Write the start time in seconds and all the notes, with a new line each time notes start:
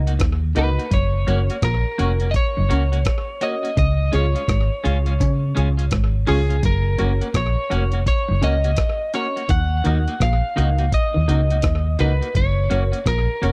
Already playing: C#2
0.07 A#3 D#4 F#4, closed hi-hat
0.19 D#2 D#3, kick, cross-stick, closed hi-hat
0.55 C#2 C#3 A#3 D#4 F#4 A#4 B4 D#5, closed hi-hat
0.78 A#3 D#4 F#4, closed hi-hat
0.91 F#1 F#2 C#5, kick, closed hi-hat
1.27 F#1 F#2 A#3 C#4 F#4 A#4 C#5, closed hi-hat
1.50 A#3 C#4 F#4, closed hi-hat
1.62 A#1 A#2 A#4, kick, cross-stick, closed hi-hat
1.98 F1 F2 A#3 C#4 F#4 A#4 C#5, closed hi-hat
2.20 A#3 C#4 F#4, closed hi-hat
2.31 D#5, kick, closed hi-hat
2.36 C#5
2.57 F#1 F#2
2.69 C#2 C#3 A#3 C#4 F#4 A#4 C#5, closed hi-hat
2.92 A#3 C#4 F#4, closed hi-hat
3.05 kick, cross-stick, closed hi-hat
3.41 A#3 C#4 F#4 A#4 C#5 D#5, closed hi-hat
3.63 A#3 C#4 F#4, closed hi-hat
3.77 C#2 C#3 D#5, kick, closed hi-hat
4.12 C#2 C#3 G#3 C#4 F4 G#4 C#5, closed hi-hat
4.35 G#3 C#4 F4, closed hi-hat
4.48 G#1 G#2, kick, cross-stick, closed hi-hat
4.84 C#2 C#3 G#3 C#4 F4 G#4 C#5, closed hi-hat
5.06 G#3 C#4 F4, closed hi-hat
5.20 C#3 C#4, kick, closed hi-hat
5.55 C#2 C#3 G#3 C#4 F4 G#4 C#5, closed hi-hat
5.77 G#3 C#4 F4, closed hi-hat
5.91 G#1 G#2, kick, cross-stick, closed hi-hat
6.27 C#2 C#3 G#3 C#4 F4 G#4 C#5, open hi-hat
6.49 G#3 C#4 F4, closed hi-hat
6.63 F#1 F#2 A#4, kick, closed hi-hat
6.98 F#1 F#2 A#3 C#4 F#4 A#4 C#5, closed hi-hat
7.21 A#3 C#4 F#4, closed hi-hat
7.34 A#1 A#2 C#5, kick, cross-stick, closed hi-hat
7.70 F1 F2 A#3 C#4 F#4 A#4 C#5, closed hi-hat
7.92 A#3 C#4 F#4, closed hi-hat
8.06 C#5, kick, closed hi-hat
8.29 F#1 F#2
8.42 C#2 C#3 A#3 C#4 F#4 A#4 C#5 D#5, closed hi-hat
8.64 A#3 C#4 F#4, closed hi-hat
8.76 kick, cross-stick, closed hi-hat
9.14 A#3 C#4 F#4 A#4 C#5, closed hi-hat
9.36 A#3 C#4 F#4, closed hi-hat
9.49 D#2 D#3 F#5, kick, closed hi-hat
9.84 D#2 D#3 A#3 D#4 F#4 A#4 D#5, closed hi-hat
10.08 A#3 D#4 F#4, closed hi-hat
10.20 A#1 A#2 F5, kick, cross-stick, closed hi-hat
10.56 C#2 C#3 A#3 D#4 F#4 A#4 D#5, closed hi-hat
10.78 A#3 D#4 F#4, closed hi-hat
10.92 D#5, kick, closed hi-hat
11.14 D#2 D#3
11.28 C#2 C#3 A#3 D#4 F#4 A#4 D#5, closed hi-hat
11.50 A#3 D#4 F#4, closed hi-hat
11.62 D#2 D#3, kick, cross-stick, closed hi-hat
11.99 C#2 C#3 A#3 D#4 F#4 A#4 B4 D#5, closed hi-hat
12.21 A#3 D#4 F#4, closed hi-hat
12.35 F#1 F#2 C#5, kick, closed hi-hat
12.70 F#1 F#2 A#3 C#4 F#4 A#4 C#5, closed hi-hat
12.92 A#3 C#4 F#4, closed hi-hat
13.06 A#1 A#2 A#4, kick, cross-stick, closed hi-hat
13.42 F1 F2 A#3 C#4 F#4 A#4 C#5, closed hi-hat